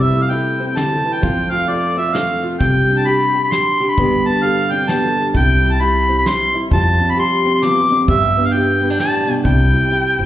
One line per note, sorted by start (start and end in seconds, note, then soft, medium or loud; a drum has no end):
0.00 1.21 C3 medium
0.00 0.13 G3 medium
0.00 1.23 G3 medium
0.00 0.29 E4 medium
0.00 0.24 E5 medium
0.14 1.21 A3 soft
0.14 0.59 E4 medium
0.22 0.31 F5 medium
0.30 1.22 E4 medium
0.30 0.78 A4 medium
0.30 0.67 G5 medium
0.30 closed hi-hat soft
0.60 1.96 C4 medium
0.60 1.05 E4 soft
0.68 0.78 G5 medium
0.76 1.03 D3 medium
0.76 0.91 G4 medium
0.76 1.14 A5 medium
0.76 snare medium
0.76 closed hi-hat soft
0.92 1.29 A4 medium
1.04 1.22 E3 medium
1.04 1.29 E4 soft
1.13 1.52 G5 medium
1.22 2.57 F2 medium
1.22 2.60 F3 medium
1.22 1.67 F4 medium
1.22 kick medium
1.22 closed hi-hat soft
1.50 2.13 A3 medium
1.50 1.96 F4 medium
1.50 1.70 F5 medium
1.68 2.41 F4 medium
1.68 2.13 A4 medium
1.68 1.97 D5 medium
1.68 closed hi-hat soft
1.97 2.58 C4 medium
1.97 2.42 F4 soft
1.97 2.16 E5 medium
2.14 2.58 A3 medium
2.14 2.66 A4 medium
2.14 2.51 F5 medium
2.14 snare medium
2.14 closed hi-hat soft
2.43 2.58 F4 medium
2.43 2.66 F4 medium
2.60 3.95 C3 medium
2.60 3.97 G3 medium
2.60 3.06 G4 medium
2.60 3.00 G5 medium
2.60 kick medium
2.60 closed hi-hat soft
2.89 3.51 D4 medium
2.89 3.34 D4 medium
2.98 3.09 A5 medium
3.06 3.34 G4 medium
3.06 3.52 G4 medium
3.06 3.43 B5 medium
3.06 closed hi-hat soft
3.35 3.80 D4 medium
3.35 3.80 G4 medium
3.43 3.53 B5 medium
3.52 3.96 D4 medium
3.52 4.04 G4 medium
3.52 3.91 C6 loud
3.52 snare medium
3.52 closed hi-hat soft
3.80 4.04 D4 medium
3.80 3.99 G4 medium
3.89 4.29 B5 medium
3.97 5.32 G2 medium
3.97 5.35 D3 medium
3.97 5.35 G3 medium
3.97 4.25 B3 medium
3.97 4.70 D4 medium
3.97 4.43 G4 medium
3.97 kick medium
3.97 closed hi-hat soft
4.26 4.88 B3 medium
4.26 4.72 D4 medium
4.26 4.45 A5 medium
4.43 5.17 G4 medium
4.43 4.90 A4 medium
4.43 4.73 F5 medium
4.43 closed hi-hat soft
4.71 4.80 C4 soft
4.71 5.32 D4 medium
4.71 4.91 G5 medium
4.82 5.17 D4 soft
4.89 5.33 B3 medium
4.89 5.03 G4 medium
4.89 5.26 A5 medium
4.89 snare medium
4.89 closed hi-hat soft
5.05 5.41 A4 soft
5.17 5.41 D4 medium
5.17 5.34 G4 medium
5.34 6.22 C2 medium
5.34 6.69 C3 medium
5.34 6.72 G3 medium
5.34 5.79 E4 medium
5.34 5.74 G5 loud
5.34 kick medium
5.34 closed hi-hat soft
5.62 6.26 G3 medium
5.62 6.08 E4 medium
5.73 5.83 A5 medium
5.80 6.53 E4 medium
5.80 6.25 G4 medium
5.80 6.18 B5 loud
5.80 closed hi-hat medium
6.09 6.70 C4 medium
6.09 6.54 E4 soft
6.18 6.29 B5 medium
6.26 6.99 G3 medium
6.26 6.78 G4 medium
6.26 6.63 C6 medium
6.26 snare medium
6.26 closed hi-hat soft
6.54 6.71 E4 medium
6.54 6.78 E4 medium
6.70 7.62 F2 medium
6.70 6.98 F2 medium
6.70 8.09 F3 medium
6.70 7.17 G4 medium
6.70 7.12 A5 loud
6.70 kick medium
6.70 closed hi-hat soft
6.99 8.36 G3 medium
6.99 7.45 C4 medium
7.10 7.18 B5 medium
7.17 8.08 G4 medium
7.17 7.63 G4 medium
7.17 7.53 C6 loud
7.17 closed hi-hat soft
7.45 8.06 C4 medium
7.45 7.90 C4 soft
7.54 7.66 C6 medium
7.62 7.90 E2 medium
7.62 7.76 F4 medium
7.62 8.00 D6 loud
7.62 snare medium
7.62 closed hi-hat soft
7.77 8.14 G4 medium
7.90 8.07 F2 medium
7.90 8.14 C4 medium
8.07 9.42 G2 medium
8.07 8.95 G2 medium
8.07 9.45 B3 medium
8.07 8.54 G4 medium
8.07 8.47 E5 loud
8.07 kick medium
8.07 closed hi-hat soft
8.37 8.80 B3 medium
8.37 8.81 D4 medium
8.46 8.54 F5 medium
8.53 9.44 G4 medium
8.53 8.98 G4 medium
8.53 8.90 G5 loud
8.53 closed hi-hat soft
8.82 8.90 B3 medium
8.82 9.26 D4 medium
8.90 9.45 D4 medium
8.90 8.99 G5 medium
8.98 9.27 A2 medium
8.98 9.51 G4 medium
8.98 9.33 A5 loud
8.98 snare medium
8.98 closed hi-hat soft
9.27 9.43 B2 medium
9.27 9.51 D4 medium
9.44 9.72 C2 medium
9.44 10.26 C3 medium
9.44 10.26 G3 medium
9.44 9.90 E4 medium
9.44 10.26 G5 loud
9.44 kick medium
9.44 closed hi-hat medium
9.73 10.26 G3 medium
9.73 10.18 E4 medium
9.91 10.26 E4 medium
9.91 10.26 G4 medium
9.91 closed hi-hat soft
10.19 10.26 G1 medium
10.19 10.26 C4 medium
10.19 10.26 E4 soft